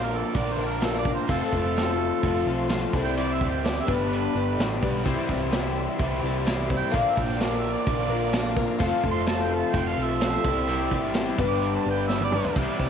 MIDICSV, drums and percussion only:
0, 0, Header, 1, 2, 480
1, 0, Start_track
1, 0, Key_signature, 0, "major"
1, 0, Tempo, 469484
1, 1321, Time_signature, 4, 2, 24, 8
1, 13185, End_track
2, 0, Start_track
2, 0, Title_t, "Drums"
2, 352, Note_on_c, 9, 42, 57
2, 357, Note_on_c, 9, 36, 97
2, 454, Note_off_c, 9, 42, 0
2, 459, Note_off_c, 9, 36, 0
2, 831, Note_on_c, 9, 42, 70
2, 839, Note_on_c, 9, 38, 103
2, 933, Note_off_c, 9, 42, 0
2, 941, Note_off_c, 9, 38, 0
2, 1076, Note_on_c, 9, 36, 85
2, 1178, Note_off_c, 9, 36, 0
2, 1319, Note_on_c, 9, 36, 103
2, 1321, Note_on_c, 9, 42, 67
2, 1421, Note_off_c, 9, 36, 0
2, 1423, Note_off_c, 9, 42, 0
2, 1560, Note_on_c, 9, 36, 66
2, 1663, Note_off_c, 9, 36, 0
2, 1809, Note_on_c, 9, 42, 63
2, 1817, Note_on_c, 9, 38, 99
2, 1911, Note_off_c, 9, 42, 0
2, 1919, Note_off_c, 9, 38, 0
2, 2284, Note_on_c, 9, 36, 99
2, 2289, Note_on_c, 9, 42, 72
2, 2386, Note_off_c, 9, 36, 0
2, 2391, Note_off_c, 9, 42, 0
2, 2756, Note_on_c, 9, 42, 70
2, 2764, Note_on_c, 9, 38, 107
2, 2858, Note_off_c, 9, 42, 0
2, 2866, Note_off_c, 9, 38, 0
2, 3002, Note_on_c, 9, 36, 93
2, 3105, Note_off_c, 9, 36, 0
2, 3245, Note_on_c, 9, 42, 70
2, 3347, Note_off_c, 9, 42, 0
2, 3486, Note_on_c, 9, 36, 77
2, 3588, Note_off_c, 9, 36, 0
2, 3728, Note_on_c, 9, 42, 57
2, 3736, Note_on_c, 9, 38, 93
2, 3830, Note_off_c, 9, 42, 0
2, 3838, Note_off_c, 9, 38, 0
2, 3970, Note_on_c, 9, 36, 101
2, 4072, Note_off_c, 9, 36, 0
2, 4222, Note_on_c, 9, 42, 65
2, 4325, Note_off_c, 9, 42, 0
2, 4696, Note_on_c, 9, 42, 65
2, 4705, Note_on_c, 9, 38, 106
2, 4799, Note_off_c, 9, 42, 0
2, 4807, Note_off_c, 9, 38, 0
2, 4935, Note_on_c, 9, 36, 80
2, 5037, Note_off_c, 9, 36, 0
2, 5171, Note_on_c, 9, 36, 105
2, 5173, Note_on_c, 9, 42, 62
2, 5273, Note_off_c, 9, 36, 0
2, 5275, Note_off_c, 9, 42, 0
2, 5410, Note_on_c, 9, 36, 76
2, 5512, Note_off_c, 9, 36, 0
2, 5644, Note_on_c, 9, 42, 62
2, 5652, Note_on_c, 9, 38, 98
2, 5746, Note_off_c, 9, 42, 0
2, 5754, Note_off_c, 9, 38, 0
2, 6125, Note_on_c, 9, 42, 73
2, 6129, Note_on_c, 9, 36, 109
2, 6228, Note_off_c, 9, 42, 0
2, 6231, Note_off_c, 9, 36, 0
2, 6609, Note_on_c, 9, 42, 75
2, 6617, Note_on_c, 9, 38, 119
2, 6711, Note_off_c, 9, 42, 0
2, 6719, Note_off_c, 9, 38, 0
2, 6850, Note_on_c, 9, 36, 84
2, 6953, Note_off_c, 9, 36, 0
2, 7091, Note_on_c, 9, 36, 110
2, 7092, Note_on_c, 9, 42, 75
2, 7194, Note_off_c, 9, 36, 0
2, 7194, Note_off_c, 9, 42, 0
2, 7330, Note_on_c, 9, 36, 71
2, 7433, Note_off_c, 9, 36, 0
2, 7456, Note_on_c, 9, 38, 31
2, 7558, Note_off_c, 9, 38, 0
2, 7564, Note_on_c, 9, 42, 68
2, 7572, Note_on_c, 9, 38, 102
2, 7666, Note_off_c, 9, 42, 0
2, 7674, Note_off_c, 9, 38, 0
2, 8038, Note_on_c, 9, 42, 70
2, 8043, Note_on_c, 9, 36, 108
2, 8140, Note_off_c, 9, 42, 0
2, 8145, Note_off_c, 9, 36, 0
2, 8513, Note_on_c, 9, 42, 70
2, 8521, Note_on_c, 9, 38, 113
2, 8616, Note_off_c, 9, 42, 0
2, 8624, Note_off_c, 9, 38, 0
2, 8758, Note_on_c, 9, 36, 86
2, 8860, Note_off_c, 9, 36, 0
2, 8999, Note_on_c, 9, 36, 115
2, 8999, Note_on_c, 9, 42, 62
2, 9101, Note_off_c, 9, 36, 0
2, 9101, Note_off_c, 9, 42, 0
2, 9241, Note_on_c, 9, 36, 74
2, 9343, Note_off_c, 9, 36, 0
2, 9474, Note_on_c, 9, 42, 60
2, 9482, Note_on_c, 9, 38, 97
2, 9576, Note_off_c, 9, 42, 0
2, 9584, Note_off_c, 9, 38, 0
2, 9958, Note_on_c, 9, 36, 99
2, 9961, Note_on_c, 9, 42, 66
2, 10060, Note_off_c, 9, 36, 0
2, 10063, Note_off_c, 9, 42, 0
2, 10437, Note_on_c, 9, 42, 75
2, 10445, Note_on_c, 9, 38, 116
2, 10539, Note_off_c, 9, 42, 0
2, 10547, Note_off_c, 9, 38, 0
2, 10680, Note_on_c, 9, 36, 104
2, 10782, Note_off_c, 9, 36, 0
2, 10926, Note_on_c, 9, 42, 73
2, 11028, Note_off_c, 9, 42, 0
2, 11159, Note_on_c, 9, 36, 70
2, 11262, Note_off_c, 9, 36, 0
2, 11389, Note_on_c, 9, 42, 64
2, 11397, Note_on_c, 9, 38, 104
2, 11491, Note_off_c, 9, 42, 0
2, 11499, Note_off_c, 9, 38, 0
2, 11639, Note_on_c, 9, 36, 105
2, 11742, Note_off_c, 9, 36, 0
2, 11876, Note_on_c, 9, 42, 67
2, 11979, Note_off_c, 9, 42, 0
2, 12365, Note_on_c, 9, 38, 67
2, 12467, Note_off_c, 9, 38, 0
2, 12480, Note_on_c, 9, 48, 67
2, 12582, Note_off_c, 9, 48, 0
2, 12596, Note_on_c, 9, 45, 92
2, 12698, Note_off_c, 9, 45, 0
2, 12723, Note_on_c, 9, 43, 91
2, 12825, Note_off_c, 9, 43, 0
2, 12839, Note_on_c, 9, 49, 96
2, 12842, Note_on_c, 9, 36, 100
2, 12941, Note_off_c, 9, 49, 0
2, 12944, Note_off_c, 9, 36, 0
2, 13081, Note_on_c, 9, 36, 66
2, 13183, Note_off_c, 9, 36, 0
2, 13185, End_track
0, 0, End_of_file